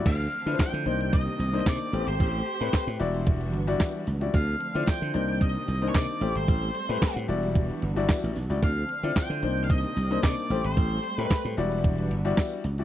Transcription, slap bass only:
\new Staff \with { instrumentName = "Slap bass" } { \clef bass \time 4/4 \key e \phrygian \tempo 4 = 112 d,8 r16 d16 r16 d16 c,4 c,8 c16 r16 a,,16 gis,,16 | a,,8 r16 a,16 r16 a,16 e,,4 g,,8 r8 cis,8 | d,8 r16 d16 r16 d16 c,4 c,8 c16 r16 a,,16 gis,,16 | a,,8 r16 a,16 r16 a,16 e,,4 g,,16 g,,16 r16 a,,16 b,,16 cis,16 |
d,8 r16 d16 r16 d16 c,4 c,8 c16 r16 a,,16 gis,,16 | a,,8 r16 a,16 r16 a,16 e,,4 g,,8 r8 cis,8 | }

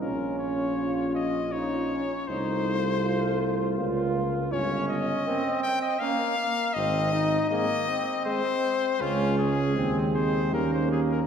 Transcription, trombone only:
\new Staff \with { instrumentName = "Trombone" } { \time 3/4 \key aes \major \tempo 4 = 80 des'4 f'4 ees'8 des'8 | ees'8 r8 f'4 f'4 | des'4 c'4 bes8 bes8 | c'8 ees'8 bes8 c'4. |
des'8 r8 c'8 aes8 bes4 | }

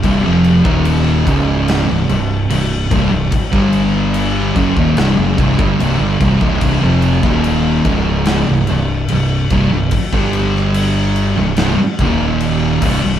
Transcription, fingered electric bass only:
\new Staff \with { instrumentName = "Fingered electric bass" } { \clef bass \time 4/4 \key c \phrygian \tempo 4 = 73 c,,16 f,,8 ees,,8. des,,8. c,,16 c,,8 c,,8 c,,16 c,,16 | r16 g,,4~ g,,16 fis,,16 ees,,16 c,,16 fis,,16 c,,16 g,,16 c,,16 g,,16 c,,16 des,,16 | c,,16 f,,8 ees,,8. des,,8. c,,16 c,,8 c,,8 c,,16 c,,16 | r16 g,,4. c,,16 c,,16 r16 ees,,4 c,,16 c,,16 | }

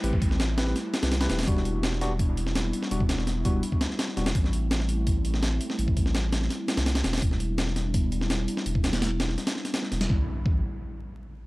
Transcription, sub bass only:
\new Staff \with { instrumentName = "Sub bass" } { \clef bass \time 4/4 \key a \minor \tempo 4 = 167 a,,2 r8. c,8. e,,8 | e,,2.~ e,,8 r8 | e,,2 r4. e,,8 | a,,2.~ a,,8 r8 |
a,,2 r8. c,8. e,,8 | e,,2.~ e,,8 r8 | e,,2 r4. e,,8 | a,,16 r8. a,,8 r2 r8 | }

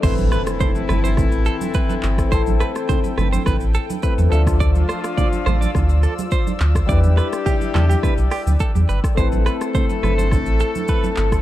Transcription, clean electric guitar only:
\new Staff \with { instrumentName = "Clean electric guitar" } { \time 4/4 \key a \minor \tempo 4 = 105 c''16 r16 b'16 r16 c''16 r16 b'16 c''16 r8 a'16 r16 b'8 r8 | c''16 r16 b'16 r16 c''16 r16 b'16 c''16 b'16 r16 a'16 r16 b'16 r16 a'16 r16 | d''16 r16 c''16 r16 d''16 r16 c''16 d''16 r8 a'16 r16 c''8 r8 | d''16 r16 b'16 r16 g'16 r16 a'16 g'16 b'16 r16 g'16 r16 a'16 r16 b'16 r16 |
c''16 r16 b'16 r16 c''16 r16 b'16 c''16 r8 a'16 r16 b'8 r8 | }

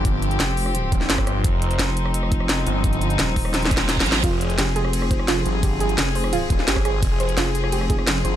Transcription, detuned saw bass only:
\new Staff \with { instrumentName = "Detuned saw bass" } { \clef bass \time 4/4 \key f \minor \tempo 4 = 172 g,,4 r4. ees,,8 g,,4 | f,,4 r2 r8 g,,8~ | g,,4 r2. | f,,4 r2 r8 g,,8~ |
g,,4 r4. ees,,8 g,,4 | f,,4 r2 r8 g,,8 | }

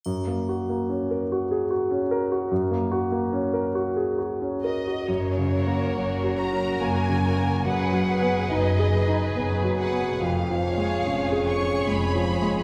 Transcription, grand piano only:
\new Staff \with { instrumentName = "Grand piano" } { \time 3/4 \key fis \major \tempo 4 = 71 fis,16 ais16 fis'16 ais16 cis'16 ais'16 fis'16 gis'16 fis'16 cis'16 ais'16 fis'16 | fis,16 ais16 fis'16 ais16 cis'16 ais'16 fis'16 gis'16 fis'16 cis'16 ais'16 fis'16 | \tuplet 3/2 { fis,8 cis8 ais8 cis'8 fis'8 cis'8 ais8 cis8 ais8 } | \tuplet 3/2 { fis,8 fis8 b8 dis'8 gis'8 dis'8 b8 fis8 b8 } |
\tuplet 3/2 { eis,8 eis8 gis8 cis'8 gis'8 cis'8 gis8 eis8 gis8 } | }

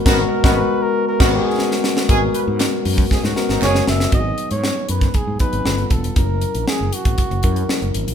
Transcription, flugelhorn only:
\new Staff \with { instrumentName = "Flugelhorn" } { \time 4/4 \key gis \minor \tempo 4 = 118 ais'8. b'8. ais'8 ais'8 gis'4 r8 | r2. cis''8 e''8 | dis''8. cis''8. b'8 gis'8 b'4 a'8 | ais'4 gis'8 fis'2 r8 | }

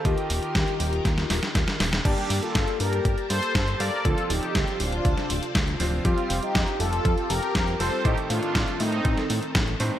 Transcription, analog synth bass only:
\new Staff \with { instrumentName = "Analog synth bass" } { \clef bass \time 4/4 \key g \minor \tempo 4 = 120 ees,8 ees,,8 ees,8 ees,,8 ees,8 ees,,8 ees,8 ees,,8 | g,,8 g,8 g,,8 g,8 g,,8 g,8 g,,8 g,8 | d,8 d,,8 d,8 d,,8 d,8 d,,8 d,8 d,,8 | f,8 f,,8 f,8 f,,8 f,8 f,,8 f,8 f,,8 |
a,,8 a,8 a,,8 a,8 a,,8 a,8 a,,8 a,8 | }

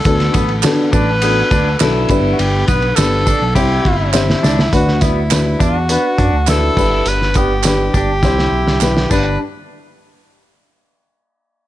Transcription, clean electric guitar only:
\new Staff \with { instrumentName = "Clean electric guitar" } { \time 4/4 \key d \mixolydian \tempo 4 = 103 r8 b8 r8 d'8 b8 d'8 e'4 | r8 b8 r8 d'8 e'4 r8 d'8 | r8 b8 r8 d'8 b8 d'8 e'4 | r8 b8 r8 d'8 e'4 r8 d'8 |
r1 | }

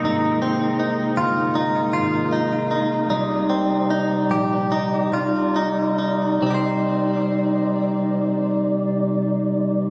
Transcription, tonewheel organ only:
\new Staff \with { instrumentName = "Tonewheel organ" } { \time 4/4 \key c \minor \tempo 4 = 72 << { <aes bes>1 | <g d''>1 | <c g ees' d''>1 | } \\ { <c ees'>1~ | <c ees'>1 | r1 | } >> }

